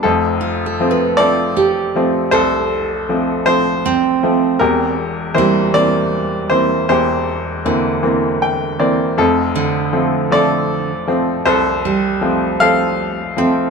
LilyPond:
<<
  \new Staff \with { instrumentName = "Steel-string acoustic guitar" } { \time 6/8 \key f \major \tempo 4. = 52 r8 f'16 a'16 b'4 g'4 | a'4.~ a'16 r16 c'4~ | c'8 r8 g4.~ g16 r16 | r4 d4.~ d16 r16 |
r8 d4.~ d16 r8. | r8 g4.~ g16 r16 c'8 | }
  \new Staff \with { instrumentName = "Upright piano" } { \time 6/8 \key f \major << { a'4. d''4. | c''4. c''4 r8 | bes'4 c''8 d''4 c''8 | c''2 g''8 d''8 |
a'4. d''4. | c''4. f''4. | } \\ { c'4. a'4. | a'4. r4. | g'4. r4. | g'2 r4 |
c'4. a'4. | a'4. a'4. | } >> }
  \new Staff \with { instrumentName = "Upright piano" } { \time 6/8 \key f \major <f,, f,>4 <f a c'>8 <f a c'>4 <f a c'>8 | c,4 <f a c'>8 <f a c'>4 <f a c'>8 | <e,, e,>4 <e bes c'>8 <e bes c'>4 <e bes c'>8 | <e,, e,>4 <e bes c'>8 <e bes c'>4 <e bes c'>8 |
<f,, f,>4 <f a c'>8 <f a c'>4 <f a c'>8 | c,4 <f a c'>8 <f a c'>4 <f a c'>8 | }
>>